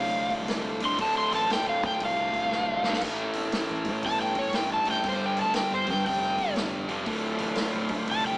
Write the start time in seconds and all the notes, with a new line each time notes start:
Already playing: C2 D2 A2 D3 C4 D4 F4 C5 F5
0.30 kick, open hi-hat
0.40 C2
0.48 snare, open hi-hat
0.80 A2 D3, open hi-hat
0.84 D2 C6
0.98 D1 D2 A2 D3 A5, kick, open hi-hat
1.18 C6
1.32 A1 A5, open hi-hat
1.50 G5, snare, open hi-hat
1.67 D1 F5
1.83 D2 G5, kick, open hi-hat
2.00 C2, kick, open hi-hat
2.05 F5
2.33 kick, open hi-hat
2.43 C2
2.52 snare
2.84 A2 D3, snare
2.88 D2
2.93 snare
2.99 A1 A2 D4 G#4 A#4 B4, kick, open hi-hat, splash
3.04 E3 A3
3.20 C#4 G4 A4 A#4
3.33 E1, open hi-hat
3.52 snare, open hi-hat
3.70 A1
3.85 A2, kick, open hi-hat
4.03 G1 A5, kick, open hi-hat
4.22 G5
4.35 C#5, kick, open hi-hat
4.45 G1
4.53 G5, snare, open hi-hat
4.73 A5
4.85 E3 A3, open hi-hat
4.90 A2 G5
5.03 G1 G2 D3 F4 G4 A4 A#4, kick, open hi-hat
5.07 G3 C5
5.26 G5
5.37 D2, open hi-hat
5.42 A5
5.54 G5, snare, open hi-hat
5.72 G1 C5
5.86 G2, kick, open hi-hat
5.90 G5
6.05 F1 G5, kick, open hi-hat
6.38 kick, open hi-hat
6.48 F1
6.56 snare, open hi-hat
6.89 G2 D3 G3, open hi-hat
7.05 D1 D2 A2 D3 E4 F4 C5 D5, kick, open hi-hat
7.38 A1, open hi-hat
7.55 snare, open hi-hat
7.74 D1
7.89 D2, kick, open hi-hat
8.07 C2 A5, kick, open hi-hat
8.27 G5